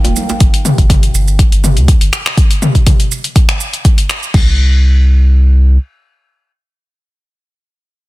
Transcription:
Already playing: analog synth pad D#4 A#4 F5 G5
0.04 analog synth bass D#1, closed hi-hat, djembe tone, high conga, shaker
0.16 low conga, shaker
0.29 djembe slap, muted conga, high conga, shaker
0.40 analog synth bass G1, kick, closed hi-hat, shaker
0.54 closed hi-hat, shaker
0.65 mid tom, shaker
0.78 analog synth bass G1, kick, closed hi-hat, shaker
0.90 kick, closed hi-hat, mid tom, shaker
1.03 closed hi-hat, shaker
1.14 analog synth bass G1, shaker
1.28 shaker
1.39 kick, closed hi-hat, shaker
1.52 analog synth bass G1, closed hi-hat, shaker
1.64 mid tom, shaker
1.76 analog synth bass D2, closed hi-hat, shaker
1.88 kick, closed hi-hat, shaker
2.01 analog synth bass G1, closed hi-hat, shaker
2.13 finger snap, shaker
2.26 finger snap, shaker
2.37 kick, closed hi-hat, shaker
2.51 closed hi-hat, shaker
2.62 mid tom, shaker
2.75 kick, closed hi-hat, shaker
2.87 kick, closed hi-hat, mid tom, shaker
3.00 closed hi-hat, shaker
3.12 shaker
3.24 closed hi-hat, shaker
3.36 kick, closed hi-hat, shaker
3.49 finger snap, closed hi-hat, shaker
3.60 shaker
3.73 closed hi-hat, shaker
3.85 kick, closed hi-hat, shaker
3.98 closed hi-hat, shaker
4.09 finger snap, shaker
4.23 shaker
4.34 analog synth bass C2, kick, crash

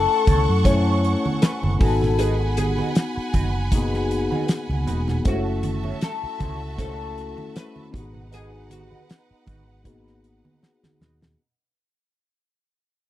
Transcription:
Already playing: tine electric piano A3 C#4 E4 G#5, oud A4, violin section A4 F#5 C#6
0.09 muted clean electric guitar stroke
0.27 fingered electric bass C#2, clean electric guitar E4 A4 C#5, kick, closed hi-hat, muted conga, high conga
0.49 fingered electric bass F#2, muted clean electric guitar stroke
0.64 tine electric piano A3 C#4 E4 G#5, clean electric guitar E4 A4 C#5, oud C#5, kick, closed hi-hat, muted conga, low conga
1.04 muted clean electric guitar stroke, closed hi-hat
1.24 muted clean electric guitar stroke, high conga
1.42 oud B4, muted clean electric guitar stroke, snare, closed hi-hat, muted conga
1.63 fingered electric bass F#1, high conga
1.79 fingered electric bass G#1, tine electric piano B3 D#4 F#4 G#5, clean electric guitar D#4 F#4 B4, oud A4, violin section F#5 G#5 B5, kick, open hi-hat, low conga
2.02 muted clean electric guitar stroke, snare, low conga
2.19 clean electric guitar D#4 F#4 B4, oud G#4, closed hi-hat, muted conga
2.41 muted clean electric guitar stroke
2.57 oud G#4, muted clean electric guitar stroke, closed hi-hat, high conga
2.78 clean electric guitar D#4 F#4 B4, high conga
2.95 muted clean electric guitar stroke, snare, closed hi-hat, muted conga
3.16 muted clean electric guitar stroke, muted fingered electric bass stroke
3.33 fingered electric bass F#1, clean electric guitar D#4 F#4 B4, kick, closed hi-hat, muted conga, high conga
3.55 muted clean electric guitar stroke
3.72 tine electric piano A#3 D#4 F#4 G#4, muted clean electric guitar stroke, kick, closed hi-hat, muted conga, low conga
3.78 tine electric piano B3
3.93 muted clean electric guitar stroke, snare
4.11 closed hi-hat, muted conga
4.31 clean electric guitar D#4 F#4 B4, high conga
4.48 muted clean electric guitar stroke, snare, closed hi-hat
4.69 fingered electric bass C#2, high conga
4.87 fingered electric bass E1, clean electric guitar D#4 F#4 B4, closed hi-hat, muted conga, low conga
5.07 muted clean electric guitar stroke, snare, low conga
5.25 fingered electric bass F#1, tine electric piano G#3 C#4 E4 A4, clean electric guitar E4 A4 C#5, violin section F#4 E5 A5, oud F#4, kick, closed hi-hat
5.31 tine electric piano A3
5.47 muted clean electric guitar stroke
5.63 muted clean electric guitar stroke, closed hi-hat, high conga
5.84 clean electric guitar E4 A4 C#5, high conga
6.01 oud A4, muted clean electric guitar stroke, snare, closed hi-hat
6.23 muted clean electric guitar stroke, muted fingered electric bass stroke
6.40 fingered electric bass C#2, clean electric guitar E4 A4 C#5, kick, closed hi-hat, high conga
6.61 muted clean electric guitar stroke
6.78 tine electric piano A3 C#4 E4 F#4, clean electric guitar D#4 G#4 C5, oud A4, kick, closed hi-hat, low conga
6.93 clean electric guitar E4 A4 C#5
7.17 muted clean electric guitar stroke, closed hi-hat
7.37 muted clean electric guitar stroke, high conga
7.55 oud B4, muted clean electric guitar stroke, snare, closed hi-hat, muted conga
7.76 high conga
7.91 fingered electric bass G#1, tine electric piano B3 D#4 F#4 G4, clean electric guitar D#4 F#4 B4, violin section D#4 B4 F#5, kick, low conga
7.95 closed hi-hat
8.02 tine electric piano G#4
8.14 muted clean electric guitar stroke, low conga
8.32 clean electric guitar D#4 F#4 B4, oud G#4, closed hi-hat, muted conga
8.52 muted clean electric guitar stroke
8.70 oud F#4, muted clean electric guitar stroke, closed hi-hat, high conga
8.90 clean electric guitar D#4 F#4 B4, high conga
9.08 muted clean electric guitar stroke, snare, closed hi-hat, muted conga
9.29 muted clean electric guitar stroke, muted fingered electric bass stroke
9.47 fingered electric bass G#1, clean electric guitar D#4 F#4 B4, kick, closed hi-hat, muted conga, high conga
9.68 muted clean electric guitar stroke
9.84 tine electric piano A#3 D#4 F#4 G#4, clean electric guitar D#4 F#4 B4, kick, closed hi-hat, muted conga, low conga
9.90 tine electric piano B3
10.07 snare
10.24 muted clean electric guitar stroke, closed hi-hat
10.45 muted clean electric guitar stroke, high conga
10.62 muted clean electric guitar stroke, snare, muted conga
10.83 snare, high conga
11.01 fingered electric bass D#2, clean electric guitar D#4 F#4 B4, snare, muted conga, low conga
11.21 snare, low conga

